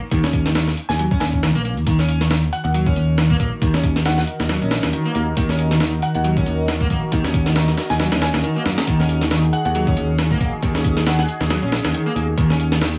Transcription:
0.11 D#2 D#3, kick, closed hi-hat
0.24 C#4, snare
0.33 kick, closed hi-hat
0.46 D#3, snare
0.55 D#3, snare, closed hi-hat
0.68 snare
0.77 closed hi-hat
0.89 D#2 G#5, snare
0.99 F#3, closed hi-hat
1.11 C#4, kick
1.20 D#2 G#5, snare, closed hi-hat
1.33 kick
1.43 D#3, snare, closed hi-hat
1.55 A#1 A#3, closed hi-hat
1.65 A#3, closed hi-hat
1.77 D#2, closed hi-hat
1.86 D#2 D#3 D#4 F#4 A#4, kick, closed hi-hat
1.99 C#4, snare
2.09 closed hi-hat
2.21 D#3, snare
2.31 D#3, snare, closed hi-hat
2.43 closed hi-hat
2.53 F#5, closed hi-hat
2.64 D#2 F#5, closed hi-hat
2.74 F#3, closed hi-hat
2.87 C#4, kick
2.96 D#2, closed hi-hat
3.18 D#3, snare, closed hi-hat
3.30 A#3, kick
3.40 A#1 A#3, kick, closed hi-hat
3.62 D#2 D#3, kick, closed hi-hat
3.74 C#4, snare
3.84 kick, closed hi-hat
3.96 D#3, snare
4.06 D#3 F#5, snare, closed hi-hat
4.18 F#5, snare
4.27 closed hi-hat
4.40 D#2, snare
4.49 F#3, snare, closed hi-hat
4.62 A#1 C#4, closed hi-hat
4.71 snare, closed hi-hat
4.83 D#2, snare, closed hi-hat
4.93 D#3, closed hi-hat
5.05 A#3
5.15 D#2 A#3, closed hi-hat
5.37 D#2 D#3, kick, closed hi-hat
5.49 C#4, snare
5.59 closed hi-hat
5.71 D#3, snare
5.80 D#3, snare, closed hi-hat
5.93 closed hi-hat
6.02 F#5, closed hi-hat
6.15 D#2 F#5, closed hi-hat
6.24 F#3, closed hi-hat
6.37 C#4, kick
6.46 D#2, closed hi-hat
6.68 D#3, snare, closed hi-hat
6.81 A#3, kick
6.90 A#1 A#3, kick, closed hi-hat
7.12 D#2 D#3, kick, closed hi-hat
7.24 C#4, snare
7.34 kick, closed hi-hat
7.46 D#3, snare
7.56 D#3, snare, closed hi-hat
7.68 snare
7.78 snare, closed hi-hat
7.90 D#2 G#5, snare
8.00 F#3, snare, closed hi-hat
8.12 D#2 C#4, snare, closed hi-hat
8.22 G#5, snare, closed hi-hat
8.34 D#2, snare, closed hi-hat
8.44 D#3, closed hi-hat
8.56 A#3
8.66 F#2 A#3, snare, closed hi-hat
8.78 snare, closed hi-hat
8.87 D#2 D#3 G#4, kick, closed hi-hat
9.00 C#4, snare
9.09 closed hi-hat
9.21 D#3, snare
9.31 D#3, snare, closed hi-hat
9.43 closed hi-hat
9.53 F#5, closed hi-hat
9.65 D#2 F#5, closed hi-hat
9.75 F#3, closed hi-hat
9.87 C#4, kick
9.97 D#2, closed hi-hat
10.19 D#3, snare, closed hi-hat
10.31 A#3, kick
10.41 A#1 A#3, kick, closed hi-hat
10.63 D#2 D#3, kick, closed hi-hat
10.75 C#4, snare
10.85 kick, closed hi-hat
10.97 D#3, snare
11.06 D#3 F#5, snare, closed hi-hat
11.19 F#5, snare
11.29 closed hi-hat
11.41 D#2, snare
11.50 F#3, snare, closed hi-hat
11.62 A#1 C#4, closed hi-hat
11.72 snare, closed hi-hat
11.84 D#2, snare, closed hi-hat
11.94 D#3, closed hi-hat
12.06 A#3
12.16 D#2 A#3, closed hi-hat
12.38 D#2 D#3, kick, closed hi-hat
12.50 C#4, snare
12.60 closed hi-hat
12.72 D#3, snare
12.81 D#3, snare, closed hi-hat
12.94 closed hi-hat

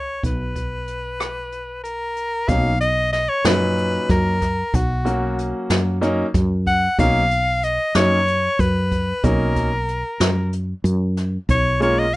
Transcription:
Already playing: B1 C#5
0.23 B1 B4, kick, closed hi-hat
0.56 kick, closed hi-hat
0.87 closed hi-hat
1.20 cross-stick, closed hi-hat
1.52 closed hi-hat
1.84 A#4, closed hi-hat
2.16 closed hi-hat
2.48 B1 F#3 A#3 C#4 D#4 F5, kick, closed hi-hat
2.81 D#5, closed hi-hat
3.13 D#5, snare, closed hi-hat
3.29 C#5
3.44 F#2 A#2 F#3 C#4 D#4 B4, snare, closed hi-hat
3.78 closed hi-hat
4.09 F#2 A#4, kick, snare, closed hi-hat
4.42 kick, snare, closed hi-hat
4.74 B1 F#4, kick, closed hi-hat
5.05 F#3 A#3 C#4 F#4, closed hi-hat
5.38 closed hi-hat
5.70 F#2, snare, closed hi-hat
6.01 F#3 A#3 C#4 D#4, snare, closed hi-hat
6.34 F#2, kick, closed hi-hat
6.66 F#5, kick, closed hi-hat
6.98 B1 F#3 A#3 C#4 D#4 F5, kick, closed hi-hat
7.31 closed hi-hat
7.63 D#5, closed hi-hat
7.95 F#2 F#3 A#3 C#4 D#4 C#5, snare, closed hi-hat
8.27 closed hi-hat
8.59 F#2 B4, kick, closed hi-hat
8.92 kick, closed hi-hat
9.23 B1 F#3 A#3 C#4 D#4 A#4, kick, closed hi-hat
9.56 kick, closed hi-hat
9.88 closed hi-hat
10.20 F#2, snare, closed hi-hat
10.53 closed hi-hat
10.84 F#2, closed hi-hat
11.17 snare, closed hi-hat
11.49 B1 C#5, kick, closed hi-hat
11.80 G#3 A#3 C#4 F4 C#5, closed hi-hat
11.99 D#5

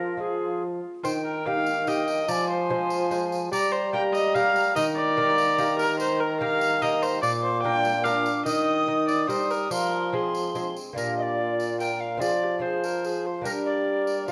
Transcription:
Already playing: F3 G#3 C4 F4 A#4
0.17 G#3 C4 F4 G#4
1.03 D#3 C5 G5, tambourine
1.25 A#4
1.46 A#3 D#4 G4 F5
1.67 tambourine
1.87 A#3 D#4 G4 D#5 G5, tambourine
2.08 tambourine
2.27 F3 D5 G#5 A#5, tambourine
2.50 C5
2.70 G#3 G#4 C5
2.90 tambourine
3.11 G#3 G#4 C5, tambourine
3.32 tambourine
3.52 G3 D5 A#5, tambourine
3.72 C5
3.93 A#3 G4 A#4 G5 A#5
4.13 D#5, tambourine
4.35 A#3 G4 A#4 F5, tambourine
4.56 tambourine
4.75 D#3 D#5 A#5, tambourine
4.96 D5
5.17 A#3 G4 A#4
5.38 tambourine
5.58 A#3 G4 A#4, tambourine
5.79 A#4, tambourine
6.00 C5, tambourine
6.20 A#4
6.41 A#3 G4 A#4 F5
6.61 tambourine
6.81 A#3 G4 A#4 D#5 A#5, tambourine
7.02 C5, tambourine
7.22 A#2 D5 D6, tambourine
7.43 C5
7.62 A#3 D4 A#4 G5
7.85 tambourine
8.04 A#3 D4 A#4 F5 D6, tambourine
8.26 tambourine
8.45 D#3 D#5 D#6, tambourine
8.87 D#4 A#4
9.08 D5, tambourine
9.28 G3 D#4 A#4 C5, tambourine
9.51 A#4, tambourine
9.71 F3 A#4 C6, tambourine
10.13 G#3 C4 G#4 C6
10.35 tambourine
10.55 G#3 C4 G#4, tambourine
10.76 tambourine
10.93 A#2 A#3 D4 F4 A#4
10.97 A#2 G4, tambourine
11.18 D#5
11.22 D5
11.39 F4
11.60 tambourine
11.79 A#4 G5, tambourine
12.00 F5
12.17 F3 C4 F4 G#4 D5
12.22 G#4, tambourine
12.42 G4
12.59 C4 F4 G#4 C5
12.84 A#4, tambourine
13.05 G#4, tambourine
13.26 C5
13.42 G3 A#3 D4 G4 A#4, tambourine
13.47 A#4
13.65 D5
13.87 A#4
14.07 tambourine
14.27 F3 F5, tambourine

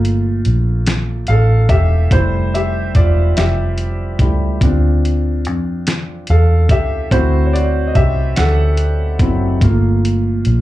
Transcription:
Already playing: G1 A3 A#3 F4
0.05 closed hi-hat
0.45 A#1, closed hi-hat
0.87 snare, closed hi-hat
1.27 A1 A4 F5, closed hi-hat
1.69 E1 G4 E5, kick, closed hi-hat
2.11 F1 G3 A3 E4 C5, kick, closed hi-hat
2.54 G4 E5, closed hi-hat
2.95 E1 F4 D5, kick, closed hi-hat
3.37 F1 G4 E5, snare, closed hi-hat
3.78 closed hi-hat
4.19 C#2 G3 A3 E4, kick, closed hi-hat
4.61 D2 C4 D4 F4, kick, closed hi-hat
5.05 closed hi-hat
5.45 F2, closed hi-hat
5.87 snare, closed hi-hat
6.27 E2 A4 F5, closed hi-hat
6.69 C#2 G4 E5, kick, closed hi-hat
7.11 D2 A3 C4 E4 F#4 C5, kick, closed hi-hat
7.46 C#5
7.53 F#4 D5, closed hi-hat
7.87 D#5
7.95 C2 G4 E5, kick, closed hi-hat
8.36 D2 A4 F#5, snare, closed hi-hat
8.77 closed hi-hat
9.19 F#1 F#3 C4 E4, kick, closed hi-hat
9.61 G1 A3 A#3 F4, kick, closed hi-hat
10.05 closed hi-hat
10.45 A#1, closed hi-hat

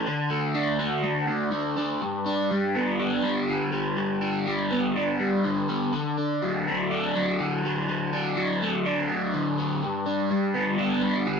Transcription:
0.06 D3
0.30 A3
0.54 D4
0.79 F#4
1.03 A3
1.28 D4
1.52 A3
1.77 D4
2.01 G2
2.26 D4
2.51 G3
2.75 B3
2.99 D4
3.23 G3
3.49 D3
3.72 G3
3.97 G2
4.22 D4
4.47 G3
4.71 B3
4.95 D4
5.19 G3
5.44 D3
5.69 G3
5.93 D3
6.18 D4
6.42 F#3
6.68 A3
6.91 D4
7.15 F#3
7.40 D3
7.65 F#3
7.89 D3
8.13 D4
8.37 F#3
8.62 A3
8.86 D4
9.09 F#3
9.34 D3
9.58 F#3
9.82 G2
10.06 D4
10.31 G3
10.54 B3
10.78 D4
11.02 G3
11.27 D3

